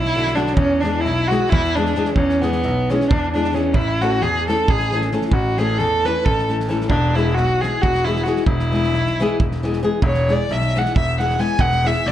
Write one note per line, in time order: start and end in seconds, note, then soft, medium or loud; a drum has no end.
0.00 0.57 B1 medium
0.00 0.36 E4 loud
0.05 snare soft
0.15 0.32 D3 medium
0.15 0.33 F#3 medium
0.15 0.33 B3 medium
0.15 0.33 D4 medium
0.15 0.33 F#4 medium
0.15 snare soft
0.27 snare soft
0.35 0.53 D3 medium
0.35 0.53 F#3 medium
0.35 0.53 B3 medium
0.35 0.55 D4 loud
0.35 0.53 D4 medium
0.35 0.53 F#4 medium
0.35 snare soft
0.47 snare soft
0.53 0.82 C#4 loud
0.53 kick loud
0.57 1.05 E2 loud
0.80 1.00 E3 medium
0.80 1.01 G#3 soft
0.80 1.01 B3 medium
0.80 1.02 D4 loud
0.80 1.01 E4 medium
0.80 snare soft
0.85 1.01 G#4 medium
1.00 1.29 E4 loud
1.05 1.34 B1 medium
1.05 snare soft
1.28 1.48 E3 medium
1.28 1.48 G#3 medium
1.28 1.48 B3 medium
1.28 1.51 F#4 loud
1.32 1.49 E4 medium
1.32 1.49 G#4 medium
1.32 snare soft
1.49 1.91 E2 loud
1.49 1.76 E4 loud
1.49 kick loud
1.64 snare soft
1.75 1.93 E3 medium
1.75 1.93 G#3 medium
1.75 1.93 B3 medium
1.75 2.14 D4 loud
1.75 1.93 E4 medium
1.75 1.94 G#4 medium
1.75 snare soft
1.86 snare soft
1.95 2.12 E3 medium
1.95 2.13 G#3 medium
1.95 2.13 B3 medium
1.95 2.13 E4 medium
1.95 2.13 G#4 medium
1.95 snare soft
2.05 snare soft
2.15 2.64 E2 loud
2.15 2.43 C#4 loud
2.15 kick medium
2.29 snare soft
2.41 2.59 E3 medium
2.41 2.60 G#3 medium
2.41 2.91 B3 loud
2.41 2.60 B3 medium
2.41 2.60 E4 medium
2.41 2.60 G#4 medium
2.41 snare soft
2.52 snare soft
2.63 2.92 B1 medium
2.63 snare soft
2.90 3.07 E3 medium
2.90 3.07 G#3 medium
2.90 3.07 B3 medium
2.90 3.10 C#4 loud
2.90 3.08 E4 medium
2.90 3.08 G#4 medium
2.90 snare soft
3.01 snare soft
3.08 3.75 E2 medium
3.08 3.33 D4 loud
3.08 kick loud
3.33 3.50 E3 medium
3.33 3.51 G#3 medium
3.33 3.51 B3 medium
3.33 3.55 D4 medium
3.33 3.51 E4 soft
3.33 3.51 G#4 medium
3.33 snare soft
3.45 snare soft
3.53 3.70 E3 medium
3.53 3.70 G#3 medium
3.53 3.70 B3 medium
3.53 3.75 C#4 medium
3.53 3.71 E4 medium
3.53 3.71 G#4 medium
3.53 snare soft
3.73 4.22 A1 loud
3.73 4.03 E4 loud
3.73 kick medium
4.01 4.18 E3 medium
4.01 4.18 A3 medium
4.01 4.19 C#4 medium
4.01 4.19 E4 medium
4.01 4.23 F#4 loud
4.01 4.19 A4 medium
4.01 snare soft
4.21 4.50 E2 medium
4.21 4.47 G#4 loud
4.21 snare soft
4.48 4.65 E3 medium
4.48 4.66 A3 medium
4.48 4.66 C#4 medium
4.48 4.66 E4 medium
4.48 4.71 A4 loud
4.48 4.66 A4 medium
4.48 snare soft
4.68 5.07 A1 medium
4.68 4.93 G#4 loud
4.68 kick loud
4.80 snare soft
4.92 5.09 E3 medium
4.92 5.09 A3 medium
4.92 5.09 C#4 medium
4.92 5.10 E4 soft
4.92 5.10 A4 medium
4.92 snare soft
5.01 snare soft
5.12 5.29 E3 medium
5.12 5.29 A3 medium
5.12 5.29 C#4 medium
5.12 5.29 E4 medium
5.12 5.29 A4 medium
5.12 snare soft
5.22 snare soft
5.32 5.79 A1 loud
5.32 5.59 F#4 loud
5.32 kick medium
5.58 5.75 E3 medium
5.58 5.75 A3 medium
5.58 5.76 C#4 medium
5.58 5.76 E4 medium
5.58 5.79 G#4 loud
5.58 5.77 A4 medium
5.58 snare soft
5.78 6.08 E2 medium
5.78 6.07 A4 loud
5.78 snare soft
6.05 6.22 E3 medium
6.05 6.23 A3 medium
6.05 6.23 C#4 medium
6.05 6.23 E4 medium
6.05 6.24 A4 medium
6.05 6.26 B4 loud
6.05 snare soft
6.25 6.90 A1 medium
6.25 6.49 A4 loud
6.25 kick medium
6.38 snare soft
6.49 6.66 E3 medium
6.49 6.66 A3 medium
6.49 6.66 C#4 medium
6.49 6.66 E4 medium
6.49 6.67 A4 medium
6.49 snare soft
6.60 snare soft
6.68 6.85 E3 medium
6.68 6.85 A3 medium
6.68 6.86 C#4 medium
6.68 6.86 E4 medium
6.68 6.86 A4 loud
6.68 snare soft
6.81 snare soft
6.89 7.37 E1 loud
6.89 7.16 D4 loud
6.89 kick medium
7.15 7.32 E3 medium
7.15 7.33 G#3 medium
7.15 7.33 B3 medium
7.15 7.36 E4 loud
7.15 7.33 E4 medium
7.15 7.33 G#4 medium
7.15 snare soft
7.35 7.65 B1 medium
7.35 7.63 F#4 loud
7.35 snare soft
7.61 7.79 E3 medium
7.61 7.80 G#3 medium
7.61 7.80 B3 medium
7.61 7.80 E4 medium
7.61 7.83 G#4 loud
7.61 7.81 G#4 medium
7.61 snare soft
7.81 8.22 E1 medium
7.81 8.06 F#4 loud
7.81 kick medium
7.95 snare soft
8.05 8.23 E3 medium
8.05 8.23 G#3 medium
8.05 8.23 B3 medium
8.05 8.25 E4 loud
8.05 8.23 E4 medium
8.05 8.23 G#4 medium
8.05 snare soft
8.16 snare soft
8.23 8.42 E3 medium
8.23 8.42 G#3 medium
8.23 8.42 B3 medium
8.23 8.43 E4 medium
8.23 8.44 F#4 medium
8.23 snare soft
8.27 8.43 G#4 medium
8.36 snare soft
8.43 8.93 E1 loud
8.43 9.81 E4 loud
8.43 kick loud
8.60 snare soft
8.71 8.89 E3 medium
8.71 8.89 G#3 medium
8.71 8.89 B3 medium
8.71 8.89 E4 medium
8.71 8.89 G#4 medium
8.71 snare soft
8.84 snare soft
8.94 9.22 B1 medium
8.94 snare soft
9.07 snare soft
9.20 9.36 E3 medium
9.20 9.37 G#3 medium
9.20 9.37 B3 medium
9.20 9.37 E4 medium
9.20 9.37 G#4 loud
9.20 snare soft
9.40 9.78 E1 medium
9.40 kick loud
9.52 snare soft
9.63 9.79 E3 medium
9.63 9.79 G#3 medium
9.63 9.79 B3 medium
9.63 9.80 E4 medium
9.63 9.80 G#4 medium
9.63 snare soft
9.73 snare soft
9.83 9.99 E3 medium
9.83 9.99 G#3 medium
9.83 9.99 B3 medium
9.83 9.99 E4 medium
9.83 10.00 G#4 loud
10.02 10.31 E1 loud
10.02 kick loud
10.07 10.34 C#5 loud
10.15 snare soft
10.28 10.45 E3 medium
10.28 10.46 G#3 medium
10.28 10.46 B3 medium
10.28 10.46 E4 soft
10.28 10.46 G#4 medium
10.28 10.54 D5 loud
10.28 snare soft
10.49 10.78 B1 loud
10.49 10.80 E5 loud
10.49 snare soft
10.61 snare soft
10.75 10.92 E3 medium
10.75 10.93 G#3 medium
10.75 10.93 B3 medium
10.75 10.93 E4 medium
10.75 10.93 G#4 medium
10.75 10.97 F#5 loud
10.75 snare soft
10.86 snare soft
10.96 11.34 E1 loud
10.96 11.19 E5 loud
10.96 kick loud
11.19 11.35 E3 medium
11.19 11.35 G#3 soft
11.19 11.36 B3 soft
11.19 11.36 E4 medium
11.19 11.36 G#4 medium
11.19 11.41 F#5 loud
11.19 snare soft
11.30 snare soft
11.39 11.55 E3 medium
11.39 11.55 G#3 medium
11.39 11.55 B3 medium
11.39 11.56 E4 medium
11.39 11.56 G#4 medium
11.39 11.62 G#5 loud
11.39 snare soft
11.59 11.87 E1 loud
11.59 11.88 F#5 loud
11.59 kick loud
11.73 snare soft
11.83 12.01 E3 medium
11.83 12.01 G#3 medium
11.83 12.01 B3 medium
11.83 12.02 E4 medium
11.83 12.02 G#4 medium
11.83 12.09 E5 loud
11.83 snare soft
12.06 12.12 B1 loud
12.06 12.12 D5 loud
12.06 snare soft